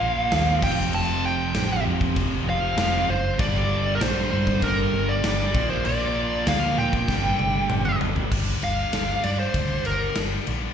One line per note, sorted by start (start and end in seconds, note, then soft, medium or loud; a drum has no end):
0.00 0.31 A#1 loud
0.00 0.30 A#2 medium
0.00 0.61 A#2 medium
0.00 0.31 F3 medium
0.00 0.62 F3 loud
0.00 0.30 A#3 medium
0.00 0.63 A#3 loud
0.00 0.63 F5 loud
0.32 0.62 D#2 medium
0.32 0.61 A#2 medium
0.32 0.62 F3 medium
0.32 0.63 A#3 medium
0.32 snare loud
0.32 crash medium
0.62 0.92 F1 loud
0.62 1.53 F2 medium
0.62 2.76 F2 medium
0.62 1.54 C3 loud
0.62 2.77 C3 medium
0.62 1.54 F3 medium
0.62 0.92 G5 loud
0.62 kick loud
0.62 crash loud
0.66 2.78 F3 loud
0.93 1.52 F1 loud
0.93 1.26 A5 loud
0.93 crash medium
1.25 1.83 G5 loud
1.54 1.84 A1 medium
1.54 2.45 F2 medium
1.54 2.46 C3 medium
1.54 2.45 F3 medium
1.54 snare loud
1.54 crash medium
1.86 2.15 F2 medium
2.01 kick loud
2.16 2.46 F1 medium
2.16 kick loud
2.16 crash medium
2.46 2.76 F1 loud
2.46 3.08 F2 medium
2.46 3.07 C3 medium
2.46 3.06 F3 medium
2.46 3.12 F5 loud
2.77 3.07 F1 medium
2.77 3.07 F2 medium
2.77 3.08 C3 medium
2.77 3.09 F3 medium
2.77 snare loud
2.77 crash medium
3.09 3.38 F#1 medium
3.09 3.38 C5 medium
3.38 3.98 G1 loud
3.38 4.29 G2 medium
3.38 5.52 G2 loud
3.38 4.30 D3 loud
3.38 5.54 D3 loud
3.38 4.30 G3 loud
3.38 5.54 G3 loud
3.38 3.96 D5 medium
3.38 kick loud
3.38 crash medium
3.95 4.02 A#4 medium
4.01 4.30 A#1 medium
4.01 4.65 C5 medium
4.01 snare loud
4.01 crash medium
4.31 4.61 G2 medium
4.31 5.22 G2 medium
4.31 5.23 D3 medium
4.31 5.22 G3 medium
4.47 kick medium
4.62 4.92 G1 medium
4.62 5.11 A#4 loud
4.62 kick loud
4.62 crash medium
4.93 5.23 G1 loud
5.09 5.70 D5 medium
5.23 5.54 G1 loud
5.23 5.53 G2 medium
5.23 5.53 D3 medium
5.23 5.54 G3 medium
5.23 snare loud
5.23 crash medium
5.54 5.84 A#1 loud
5.54 7.06 A#2 medium
5.54 6.45 A#2 medium
5.54 6.46 F3 medium
5.54 7.07 F3 medium
5.54 6.46 A#3 medium
5.54 7.08 A#3 loud
5.54 kick loud
5.70 5.85 C5 medium
5.85 6.44 A#1 loud
5.85 6.49 D5 loud
5.85 crash medium
6.46 6.76 D2 loud
6.46 7.06 A#2 medium
6.46 7.07 F3 medium
6.46 7.08 A#3 medium
6.46 6.79 F5 loud
6.46 snare loud
6.46 crash medium
6.78 7.07 A#2 medium
6.78 7.98 G5 loud
6.93 kick medium
7.08 7.37 G1 medium
7.08 7.99 G2 medium
7.08 8.30 G2 medium
7.08 8.00 D3 medium
7.08 8.31 D3 medium
7.08 7.98 G3 loud
7.08 kick loud
7.08 snare medium
7.13 8.32 G3 loud
7.39 7.69 G1 medium
7.39 high tom medium
7.70 7.99 G1 loud
7.70 mid tom loud
7.85 mid tom medium
8.00 8.30 G1 medium
8.00 8.31 G2 medium
8.00 8.30 D3 medium
8.00 8.29 G3 medium
8.00 floor tom loud
8.16 floor tom loud
8.32 8.54 G1 medium
8.32 8.92 G2 medium
8.32 8.92 D3 loud
8.32 8.93 G3 medium
8.32 kick loud
8.32 crash loud
8.62 8.85 G1 medium
8.62 9.23 F5 medium
8.62 ride medium
8.93 9.15 G1 medium
8.93 9.22 G2 medium
8.93 9.22 D3 medium
8.93 9.23 G3 medium
8.93 snare loud
8.93 ride loud
9.23 9.53 G2 medium
9.23 9.46 G2 medium
9.23 9.54 D3 medium
9.23 9.54 G3 medium
9.23 9.39 D5 medium
9.23 ride medium
9.39 9.84 C5 medium
9.54 9.77 D2 medium
9.54 10.14 G2 medium
9.54 10.15 D3 medium
9.54 10.15 G3 loud
9.54 kick loud
9.54 ride loud
9.85 10.08 G1 medium
9.85 10.16 A#4 medium
9.85 ride medium
10.15 10.38 G1 medium
10.15 10.45 G2 medium
10.15 10.46 D3 medium
10.15 10.47 G3 medium
10.15 snare loud
10.15 ride medium
10.47 10.69 A#1 medium
10.47 10.74 G2 medium
10.47 10.74 D3 medium
10.47 10.74 G3 medium
10.47 ride medium